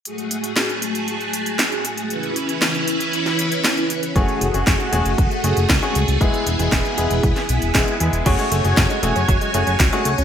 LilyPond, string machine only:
\new Staff \with { instrumentName = "String machine" } { \time 4/4 \key fis \minor \tempo 4 = 117 << { gis'1 | <e b'>1 | gis'1~ | gis'1 |
<fis' gis''>1 | } \\ { <a fis'>1 | <cis' e'>1 | <a fis'>1 | <b e'>1 |
cis''1 | } >> }